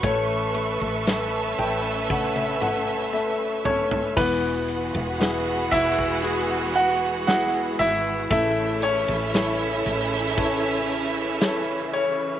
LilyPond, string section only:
\new Staff \with { instrumentName = "String section" } { \time 4/4 \key a \mixolydian \tempo 4 = 58 << { <b' e'' cis'''>1 | \key e \major <e gis fis'>1 | <cis e e'>1 | } \\ { a''1 | b1 | a2 r2 | } >> }